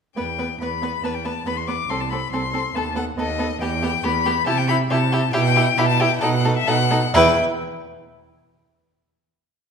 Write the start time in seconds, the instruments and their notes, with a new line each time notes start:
0.16 cello E2, viola B3, violin B4 G5
0.39 viola B3, violin B4
0.61 cello E2, viola B3, violin B4 B5
0.82 viola B3, violin B4
1.03 cello E2, viola B3, violin B4 A5
1.14 violin G5
1.25 viola B3, violin B4 A5
1.46 cello E2, viola B3, violin B4 B5
1.57 violin C6
1.67 viola B3, violin B4 D6
1.89 cello C2, viola C4, violin A4 C6
2.01 violin A5
2.09 viola C4, violin A4 B5
2.32 cello C2, viola C4, violin A4 C6
2.54 viola C4, violin A4
2.74 cello D#2, viola B3, violin A4 A5
2.96 viola B3, violin A4 F#5
3.18 cello D#2, viola B3, violin A4 D#5
3.39 viola B3, violin A4
3.61 cello E2, viola B3, violin G4 G5
3.83 viola B3, violin G4
4.03 cello E2, viola B3, violin G4 B5
4.26 viola B3, violin G4
4.46 cello C3, viola E4, violin G4 A5
4.58 violin G5
4.68 viola E4, violin G4 B5
4.90 cello C3, viola E4, violin G4 A5
5.12 viola E4, violin G4
5.33 cello B2, viola E4, violin G4 G5
5.56 viola E4, violin G4
5.78 cello B2, viola E4, violin G4 B5
5.88 violin A5
6.00 viola E4, violin G4 G5
6.21 cello B2, viola D#4, violin A4 F#5
6.45 viola D#4, violin A4
6.57 violin E5
6.67 cello B2, viola D#4, violin A4 F#5
6.91 viola D#4, violin A4
7.14 cello E2, viola E4, violin B4 G5